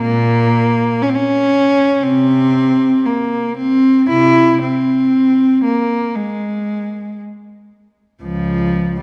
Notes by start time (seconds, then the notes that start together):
0.00 A#2 A#3
1.02 C#4
1.09 C4
1.15 C#4
2.02 C3 C4
3.05 A#3
3.57 C4
4.09 C3 E4
4.62 C4
5.64 A#3
6.16 G#3
8.23 C#2 F3